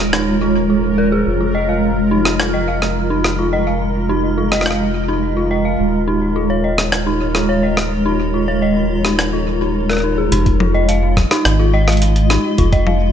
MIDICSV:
0, 0, Header, 1, 6, 480
1, 0, Start_track
1, 0, Key_signature, -4, "minor"
1, 0, Tempo, 566038
1, 1071, Time_signature, 4, 2, 24, 8
1, 11127, End_track
2, 0, Start_track
2, 0, Title_t, "Synth texture"
2, 0, Program_c, 0, 99
2, 0, Note_on_c, 0, 70, 79
2, 8761, Note_off_c, 0, 70, 0
2, 11127, End_track
3, 0, Start_track
3, 0, Title_t, "Ambient pad"
3, 0, Program_c, 1, 92
3, 0, Note_on_c, 1, 56, 78
3, 0, Note_on_c, 1, 65, 74
3, 0, Note_on_c, 1, 73, 84
3, 1038, Note_off_c, 1, 73, 0
3, 1071, Note_on_c, 1, 75, 85
3, 4877, Note_off_c, 1, 75, 0
3, 4878, Note_off_c, 1, 56, 0
3, 4878, Note_off_c, 1, 65, 0
3, 4911, Note_on_c, 1, 56, 83
3, 4911, Note_on_c, 1, 65, 73
3, 4911, Note_on_c, 1, 73, 88
3, 8717, Note_off_c, 1, 56, 0
3, 8717, Note_off_c, 1, 65, 0
3, 8717, Note_off_c, 1, 73, 0
3, 8750, Note_on_c, 1, 56, 78
3, 8750, Note_on_c, 1, 65, 76
3, 8750, Note_on_c, 1, 75, 92
3, 11127, Note_off_c, 1, 56, 0
3, 11127, Note_off_c, 1, 65, 0
3, 11127, Note_off_c, 1, 75, 0
3, 11127, End_track
4, 0, Start_track
4, 0, Title_t, "Synth bell"
4, 0, Program_c, 2, 98
4, 111, Note_on_c, 2, 63, 88
4, 177, Note_off_c, 2, 63, 0
4, 351, Note_on_c, 2, 65, 74
4, 417, Note_off_c, 2, 65, 0
4, 591, Note_on_c, 2, 65, 71
4, 631, Note_off_c, 2, 65, 0
4, 831, Note_on_c, 2, 70, 94
4, 897, Note_off_c, 2, 70, 0
4, 951, Note_on_c, 2, 68, 97
4, 1050, Note_off_c, 2, 68, 0
4, 1191, Note_on_c, 2, 65, 69
4, 1290, Note_off_c, 2, 65, 0
4, 1311, Note_on_c, 2, 75, 90
4, 1377, Note_off_c, 2, 75, 0
4, 1431, Note_on_c, 2, 77, 68
4, 1530, Note_off_c, 2, 77, 0
4, 1791, Note_on_c, 2, 63, 95
4, 1857, Note_off_c, 2, 63, 0
4, 2031, Note_on_c, 2, 65, 77
4, 2130, Note_off_c, 2, 65, 0
4, 2151, Note_on_c, 2, 75, 92
4, 2217, Note_off_c, 2, 75, 0
4, 2271, Note_on_c, 2, 77, 73
4, 2370, Note_off_c, 2, 77, 0
4, 2631, Note_on_c, 2, 63, 91
4, 2697, Note_off_c, 2, 63, 0
4, 2872, Note_on_c, 2, 65, 76
4, 2970, Note_off_c, 2, 65, 0
4, 2992, Note_on_c, 2, 75, 93
4, 3057, Note_off_c, 2, 75, 0
4, 3111, Note_on_c, 2, 77, 72
4, 3210, Note_off_c, 2, 77, 0
4, 3471, Note_on_c, 2, 63, 100
4, 3537, Note_off_c, 2, 63, 0
4, 3711, Note_on_c, 2, 65, 74
4, 3810, Note_off_c, 2, 65, 0
4, 3831, Note_on_c, 2, 75, 102
4, 3897, Note_off_c, 2, 75, 0
4, 3951, Note_on_c, 2, 77, 72
4, 4050, Note_off_c, 2, 77, 0
4, 4311, Note_on_c, 2, 63, 91
4, 4377, Note_off_c, 2, 63, 0
4, 4551, Note_on_c, 2, 65, 68
4, 4650, Note_off_c, 2, 65, 0
4, 4671, Note_on_c, 2, 75, 92
4, 4737, Note_off_c, 2, 75, 0
4, 4792, Note_on_c, 2, 77, 76
4, 4890, Note_off_c, 2, 77, 0
4, 5152, Note_on_c, 2, 63, 96
4, 5217, Note_off_c, 2, 63, 0
4, 5391, Note_on_c, 2, 65, 83
4, 5490, Note_off_c, 2, 65, 0
4, 5511, Note_on_c, 2, 73, 95
4, 5577, Note_off_c, 2, 73, 0
4, 5631, Note_on_c, 2, 75, 75
4, 5730, Note_off_c, 2, 75, 0
4, 5992, Note_on_c, 2, 63, 94
4, 6057, Note_off_c, 2, 63, 0
4, 6231, Note_on_c, 2, 65, 70
4, 6330, Note_off_c, 2, 65, 0
4, 6351, Note_on_c, 2, 73, 95
4, 6417, Note_off_c, 2, 73, 0
4, 6471, Note_on_c, 2, 75, 69
4, 6570, Note_off_c, 2, 75, 0
4, 6831, Note_on_c, 2, 63, 101
4, 6897, Note_off_c, 2, 63, 0
4, 7071, Note_on_c, 2, 65, 68
4, 7170, Note_off_c, 2, 65, 0
4, 7191, Note_on_c, 2, 73, 94
4, 7257, Note_off_c, 2, 73, 0
4, 7311, Note_on_c, 2, 75, 81
4, 7410, Note_off_c, 2, 75, 0
4, 7671, Note_on_c, 2, 63, 100
4, 7737, Note_off_c, 2, 63, 0
4, 7911, Note_on_c, 2, 65, 71
4, 8010, Note_off_c, 2, 65, 0
4, 8151, Note_on_c, 2, 63, 72
4, 8191, Note_off_c, 2, 63, 0
4, 8391, Note_on_c, 2, 70, 92
4, 8457, Note_off_c, 2, 70, 0
4, 8511, Note_on_c, 2, 63, 73
4, 8577, Note_off_c, 2, 63, 0
4, 8631, Note_on_c, 2, 68, 74
4, 8697, Note_off_c, 2, 68, 0
4, 8751, Note_on_c, 2, 63, 102
4, 8817, Note_off_c, 2, 63, 0
4, 8991, Note_on_c, 2, 65, 72
4, 9090, Note_off_c, 2, 65, 0
4, 9112, Note_on_c, 2, 75, 95
4, 9177, Note_off_c, 2, 75, 0
4, 9232, Note_on_c, 2, 77, 87
4, 9330, Note_off_c, 2, 77, 0
4, 9591, Note_on_c, 2, 63, 106
4, 9657, Note_off_c, 2, 63, 0
4, 9832, Note_on_c, 2, 65, 76
4, 9930, Note_off_c, 2, 65, 0
4, 9952, Note_on_c, 2, 75, 101
4, 10018, Note_off_c, 2, 75, 0
4, 10073, Note_on_c, 2, 77, 76
4, 10171, Note_off_c, 2, 77, 0
4, 10432, Note_on_c, 2, 63, 101
4, 10498, Note_off_c, 2, 63, 0
4, 10672, Note_on_c, 2, 65, 81
4, 10771, Note_off_c, 2, 65, 0
4, 10792, Note_on_c, 2, 75, 103
4, 10857, Note_off_c, 2, 75, 0
4, 10911, Note_on_c, 2, 77, 76
4, 11010, Note_off_c, 2, 77, 0
4, 11127, End_track
5, 0, Start_track
5, 0, Title_t, "Analog synth bass"
5, 0, Program_c, 3, 38
5, 0, Note_on_c, 3, 27, 85
5, 1047, Note_off_c, 3, 27, 0
5, 1071, Note_on_c, 3, 29, 85
5, 4887, Note_off_c, 3, 29, 0
5, 4910, Note_on_c, 3, 27, 86
5, 8727, Note_off_c, 3, 27, 0
5, 8750, Note_on_c, 3, 29, 102
5, 9537, Note_off_c, 3, 29, 0
5, 9710, Note_on_c, 3, 32, 81
5, 10497, Note_off_c, 3, 32, 0
5, 10671, Note_on_c, 3, 29, 100
5, 11127, Note_off_c, 3, 29, 0
5, 11127, End_track
6, 0, Start_track
6, 0, Title_t, "Drums"
6, 111, Note_on_c, 9, 37, 114
6, 195, Note_off_c, 9, 37, 0
6, 1911, Note_on_c, 9, 37, 72
6, 1996, Note_off_c, 9, 37, 0
6, 2032, Note_on_c, 9, 37, 114
6, 2116, Note_off_c, 9, 37, 0
6, 2392, Note_on_c, 9, 37, 53
6, 2477, Note_off_c, 9, 37, 0
6, 2751, Note_on_c, 9, 37, 69
6, 2836, Note_off_c, 9, 37, 0
6, 3831, Note_on_c, 9, 37, 74
6, 3911, Note_off_c, 9, 37, 0
6, 3911, Note_on_c, 9, 37, 56
6, 3950, Note_off_c, 9, 37, 0
6, 3950, Note_on_c, 9, 37, 107
6, 3991, Note_off_c, 9, 37, 0
6, 3991, Note_on_c, 9, 37, 46
6, 4076, Note_off_c, 9, 37, 0
6, 5751, Note_on_c, 9, 37, 77
6, 5836, Note_off_c, 9, 37, 0
6, 5870, Note_on_c, 9, 37, 106
6, 5955, Note_off_c, 9, 37, 0
6, 6231, Note_on_c, 9, 37, 58
6, 6315, Note_off_c, 9, 37, 0
6, 6590, Note_on_c, 9, 37, 77
6, 6675, Note_off_c, 9, 37, 0
6, 7671, Note_on_c, 9, 37, 76
6, 7756, Note_off_c, 9, 37, 0
6, 7791, Note_on_c, 9, 37, 101
6, 7876, Note_off_c, 9, 37, 0
6, 8391, Note_on_c, 9, 37, 37
6, 8421, Note_off_c, 9, 37, 0
6, 8421, Note_on_c, 9, 37, 29
6, 8452, Note_off_c, 9, 37, 0
6, 8452, Note_on_c, 9, 37, 24
6, 8482, Note_off_c, 9, 37, 0
6, 8482, Note_on_c, 9, 37, 20
6, 8567, Note_off_c, 9, 37, 0
6, 8752, Note_on_c, 9, 42, 85
6, 8837, Note_off_c, 9, 42, 0
6, 8871, Note_on_c, 9, 36, 83
6, 8872, Note_on_c, 9, 42, 37
6, 8956, Note_off_c, 9, 36, 0
6, 8957, Note_off_c, 9, 42, 0
6, 8991, Note_on_c, 9, 48, 92
6, 9076, Note_off_c, 9, 48, 0
6, 9232, Note_on_c, 9, 42, 81
6, 9317, Note_off_c, 9, 42, 0
6, 9471, Note_on_c, 9, 36, 87
6, 9472, Note_on_c, 9, 37, 62
6, 9472, Note_on_c, 9, 48, 92
6, 9556, Note_off_c, 9, 36, 0
6, 9557, Note_off_c, 9, 37, 0
6, 9557, Note_off_c, 9, 48, 0
6, 9592, Note_on_c, 9, 37, 84
6, 9592, Note_on_c, 9, 42, 57
6, 9676, Note_off_c, 9, 37, 0
6, 9676, Note_off_c, 9, 42, 0
6, 9711, Note_on_c, 9, 37, 119
6, 9711, Note_on_c, 9, 42, 83
6, 9796, Note_off_c, 9, 37, 0
6, 9796, Note_off_c, 9, 42, 0
6, 10071, Note_on_c, 9, 37, 61
6, 10071, Note_on_c, 9, 42, 51
6, 10111, Note_off_c, 9, 42, 0
6, 10111, Note_on_c, 9, 42, 41
6, 10151, Note_off_c, 9, 42, 0
6, 10151, Note_on_c, 9, 42, 35
6, 10156, Note_off_c, 9, 37, 0
6, 10191, Note_off_c, 9, 42, 0
6, 10191, Note_on_c, 9, 42, 81
6, 10276, Note_off_c, 9, 42, 0
6, 10311, Note_on_c, 9, 42, 42
6, 10396, Note_off_c, 9, 42, 0
6, 10431, Note_on_c, 9, 37, 82
6, 10516, Note_off_c, 9, 37, 0
6, 10671, Note_on_c, 9, 36, 92
6, 10671, Note_on_c, 9, 42, 84
6, 10756, Note_off_c, 9, 36, 0
6, 10756, Note_off_c, 9, 42, 0
6, 10791, Note_on_c, 9, 36, 90
6, 10791, Note_on_c, 9, 42, 40
6, 10876, Note_off_c, 9, 36, 0
6, 10876, Note_off_c, 9, 42, 0
6, 10911, Note_on_c, 9, 48, 87
6, 10996, Note_off_c, 9, 48, 0
6, 11127, End_track
0, 0, End_of_file